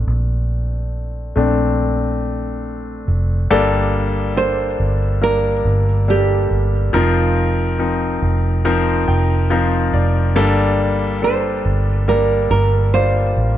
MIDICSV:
0, 0, Header, 1, 4, 480
1, 0, Start_track
1, 0, Key_signature, -2, "minor"
1, 0, Tempo, 857143
1, 44, Time_signature, 4, 2, 24, 8
1, 7603, End_track
2, 0, Start_track
2, 0, Title_t, "Nylon-string guitar"
2, 0, Program_c, 0, 24
2, 2449, Note_on_c, 0, 72, 102
2, 2929, Note_off_c, 0, 72, 0
2, 2932, Note_on_c, 0, 70, 104
2, 3385, Note_off_c, 0, 70, 0
2, 3416, Note_on_c, 0, 67, 101
2, 3868, Note_off_c, 0, 67, 0
2, 3898, Note_on_c, 0, 65, 68
2, 4828, Note_off_c, 0, 65, 0
2, 6294, Note_on_c, 0, 72, 87
2, 6747, Note_off_c, 0, 72, 0
2, 6769, Note_on_c, 0, 70, 98
2, 6990, Note_off_c, 0, 70, 0
2, 7004, Note_on_c, 0, 70, 72
2, 7243, Note_off_c, 0, 70, 0
2, 7245, Note_on_c, 0, 72, 97
2, 7603, Note_off_c, 0, 72, 0
2, 7603, End_track
3, 0, Start_track
3, 0, Title_t, "Grand piano"
3, 0, Program_c, 1, 0
3, 0, Control_c, 1, 64, 127
3, 0, Note_on_c, 1, 57, 43
3, 0, Note_on_c, 1, 60, 38
3, 0, Note_on_c, 1, 62, 43
3, 760, Note_off_c, 1, 57, 0
3, 760, Note_on_c, 1, 57, 55
3, 764, Note_off_c, 1, 60, 0
3, 764, Note_on_c, 1, 60, 50
3, 768, Note_off_c, 1, 62, 0
3, 768, Note_on_c, 1, 62, 64
3, 1939, Note_off_c, 1, 57, 0
3, 1942, Note_off_c, 1, 60, 0
3, 1943, Note_off_c, 1, 62, 0
3, 1963, Note_on_c, 1, 43, 71
3, 1963, Note_on_c, 1, 55, 96
3, 1964, Note_on_c, 1, 58, 95
3, 1965, Note_on_c, 1, 69, 110
3, 1966, Note_on_c, 1, 62, 88
3, 1971, Control_c, 1, 64, 0
3, 2064, Control_c, 1, 64, 127
3, 2419, Note_off_c, 1, 55, 0
3, 2420, Note_off_c, 1, 58, 0
3, 2420, Note_off_c, 1, 69, 0
3, 2421, Note_off_c, 1, 62, 0
3, 2442, Note_on_c, 1, 55, 65
3, 2443, Note_on_c, 1, 58, 63
3, 2444, Note_on_c, 1, 62, 64
3, 2447, Note_on_c, 1, 69, 71
3, 2661, Note_off_c, 1, 43, 0
3, 2899, Note_off_c, 1, 55, 0
3, 2900, Note_off_c, 1, 58, 0
3, 2900, Note_off_c, 1, 62, 0
3, 2901, Note_off_c, 1, 69, 0
3, 2920, Note_on_c, 1, 55, 68
3, 2920, Note_on_c, 1, 58, 70
3, 2922, Note_on_c, 1, 62, 70
3, 2923, Note_on_c, 1, 70, 74
3, 3378, Note_off_c, 1, 55, 0
3, 3378, Note_off_c, 1, 58, 0
3, 3379, Note_off_c, 1, 62, 0
3, 3380, Note_off_c, 1, 70, 0
3, 3405, Note_on_c, 1, 55, 70
3, 3405, Note_on_c, 1, 58, 57
3, 3406, Note_on_c, 1, 62, 63
3, 3408, Note_on_c, 1, 69, 71
3, 3860, Note_off_c, 1, 55, 0
3, 3861, Note_off_c, 1, 58, 0
3, 3861, Note_off_c, 1, 62, 0
3, 3862, Note_off_c, 1, 69, 0
3, 3881, Note_on_c, 1, 53, 94
3, 3884, Note_on_c, 1, 60, 83
3, 3886, Note_on_c, 1, 63, 79
3, 3886, Note_on_c, 1, 70, 108
3, 3892, Control_c, 1, 64, 0
3, 3997, Control_c, 1, 64, 127
3, 4338, Note_off_c, 1, 53, 0
3, 4340, Note_off_c, 1, 60, 0
3, 4341, Note_off_c, 1, 63, 0
3, 4341, Note_off_c, 1, 70, 0
3, 4362, Note_on_c, 1, 53, 67
3, 4363, Note_on_c, 1, 60, 61
3, 4365, Note_on_c, 1, 63, 70
3, 4366, Note_on_c, 1, 70, 68
3, 4819, Note_off_c, 1, 53, 0
3, 4820, Note_off_c, 1, 60, 0
3, 4821, Note_off_c, 1, 63, 0
3, 4821, Note_off_c, 1, 70, 0
3, 4843, Note_on_c, 1, 53, 92
3, 4844, Note_on_c, 1, 60, 83
3, 4846, Note_on_c, 1, 63, 81
3, 4846, Note_on_c, 1, 70, 92
3, 5084, Note_on_c, 1, 79, 74
3, 5300, Note_off_c, 1, 53, 0
3, 5300, Note_off_c, 1, 60, 0
3, 5301, Note_off_c, 1, 63, 0
3, 5301, Note_off_c, 1, 70, 0
3, 5307, Note_off_c, 1, 79, 0
3, 5321, Note_on_c, 1, 53, 90
3, 5323, Note_on_c, 1, 60, 79
3, 5324, Note_on_c, 1, 77, 72
3, 5326, Note_on_c, 1, 63, 78
3, 5328, Note_on_c, 1, 70, 88
3, 5547, Note_off_c, 1, 77, 0
3, 5564, Note_on_c, 1, 74, 73
3, 5779, Note_off_c, 1, 53, 0
3, 5780, Note_off_c, 1, 60, 0
3, 5781, Note_off_c, 1, 63, 0
3, 5782, Note_off_c, 1, 70, 0
3, 5787, Note_off_c, 1, 74, 0
3, 5800, Note_on_c, 1, 55, 113
3, 5800, Note_on_c, 1, 58, 94
3, 5801, Note_on_c, 1, 43, 76
3, 5803, Note_on_c, 1, 62, 97
3, 5803, Note_on_c, 1, 69, 114
3, 5811, Control_c, 1, 64, 0
3, 5914, Control_c, 1, 64, 127
3, 6258, Note_off_c, 1, 55, 0
3, 6258, Note_off_c, 1, 58, 0
3, 6259, Note_off_c, 1, 62, 0
3, 6260, Note_off_c, 1, 69, 0
3, 6282, Note_on_c, 1, 55, 68
3, 6284, Note_on_c, 1, 58, 59
3, 6285, Note_on_c, 1, 62, 68
3, 6287, Note_on_c, 1, 69, 80
3, 6500, Note_off_c, 1, 43, 0
3, 6739, Note_off_c, 1, 55, 0
3, 6740, Note_off_c, 1, 58, 0
3, 6740, Note_off_c, 1, 62, 0
3, 6741, Note_off_c, 1, 69, 0
3, 6764, Note_on_c, 1, 55, 75
3, 6765, Note_on_c, 1, 62, 71
3, 6766, Note_on_c, 1, 58, 70
3, 6767, Note_on_c, 1, 70, 76
3, 7220, Note_off_c, 1, 55, 0
3, 7221, Note_off_c, 1, 58, 0
3, 7221, Note_off_c, 1, 62, 0
3, 7221, Note_off_c, 1, 70, 0
3, 7248, Note_on_c, 1, 55, 68
3, 7248, Note_on_c, 1, 58, 58
3, 7249, Note_on_c, 1, 62, 61
3, 7251, Note_on_c, 1, 65, 69
3, 7603, Note_off_c, 1, 55, 0
3, 7603, Note_off_c, 1, 58, 0
3, 7603, Note_off_c, 1, 62, 0
3, 7603, Note_off_c, 1, 65, 0
3, 7603, End_track
4, 0, Start_track
4, 0, Title_t, "Fingered electric bass"
4, 0, Program_c, 2, 33
4, 41, Note_on_c, 2, 34, 92
4, 740, Note_off_c, 2, 34, 0
4, 765, Note_on_c, 2, 34, 98
4, 1702, Note_off_c, 2, 34, 0
4, 1724, Note_on_c, 2, 29, 94
4, 1947, Note_off_c, 2, 29, 0
4, 1964, Note_on_c, 2, 31, 84
4, 2662, Note_off_c, 2, 31, 0
4, 2686, Note_on_c, 2, 31, 81
4, 3143, Note_off_c, 2, 31, 0
4, 3164, Note_on_c, 2, 31, 107
4, 3621, Note_off_c, 2, 31, 0
4, 3643, Note_on_c, 2, 31, 90
4, 3867, Note_off_c, 2, 31, 0
4, 3886, Note_on_c, 2, 29, 93
4, 4582, Note_off_c, 2, 29, 0
4, 4605, Note_on_c, 2, 29, 94
4, 5062, Note_off_c, 2, 29, 0
4, 5086, Note_on_c, 2, 29, 110
4, 5543, Note_off_c, 2, 29, 0
4, 5565, Note_on_c, 2, 29, 103
4, 5807, Note_off_c, 2, 29, 0
4, 5807, Note_on_c, 2, 31, 106
4, 6503, Note_off_c, 2, 31, 0
4, 6526, Note_on_c, 2, 31, 90
4, 6983, Note_off_c, 2, 31, 0
4, 7002, Note_on_c, 2, 31, 101
4, 7461, Note_off_c, 2, 31, 0
4, 7484, Note_on_c, 2, 33, 96
4, 7603, Note_off_c, 2, 33, 0
4, 7603, End_track
0, 0, End_of_file